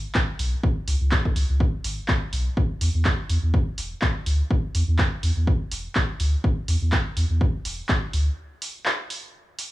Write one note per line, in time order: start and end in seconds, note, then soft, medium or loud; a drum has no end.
0.15 kick loud
0.15 clap loud
0.39 0.55 B1 medium
0.39 open hi-hat medium
0.64 kick loud
0.88 0.96 C#2 loud
0.88 open hi-hat loud
1.01 1.15 C#2 medium
1.11 kick loud
1.11 clap loud
1.25 kick medium
1.36 1.44 C#2 medium
1.36 open hi-hat medium
1.49 1.63 C#2 medium
1.60 kick loud
1.84 2.00 G#1 medium
1.84 open hi-hat loud
2.08 kick loud
2.08 clap loud
2.33 2.48 B1 medium
2.33 open hi-hat medium
2.57 kick loud
2.81 2.89 E2 medium
2.81 open hi-hat loud
2.95 3.08 E2 medium
3.05 kick loud
3.05 clap loud
3.30 3.38 E2 medium
3.30 open hi-hat medium
3.43 3.57 E2 medium
3.54 kick loud
3.78 3.94 E1 medium
3.78 open hi-hat loud
4.02 kick loud
4.02 clap loud
4.26 4.42 D2 medium
4.26 open hi-hat medium
4.51 kick loud
4.75 4.83 E2 medium
4.75 open hi-hat loud
4.88 5.02 E2 medium
4.99 kick loud
4.99 clap loud
5.23 5.31 E2 medium
5.23 open hi-hat medium
5.37 5.50 E2 medium
5.47 kick loud
5.72 5.87 E1 medium
5.72 open hi-hat loud
5.95 kick loud
5.95 clap loud
6.20 6.36 D2 medium
6.20 open hi-hat medium
6.44 kick loud
6.68 6.76 E2 loud
6.68 open hi-hat medium
6.82 6.95 E2 medium
6.92 kick loud
6.92 clap loud
7.17 7.25 E2 medium
7.17 open hi-hat medium
7.30 7.44 E2 medium
7.41 kick loud
7.65 7.81 E1 medium
7.65 open hi-hat loud
7.89 kick loud
7.89 clap loud
8.13 8.29 D2 medium
8.13 open hi-hat medium
8.62 open hi-hat medium
8.86 clap loud
9.10 open hi-hat medium
9.59 open hi-hat loud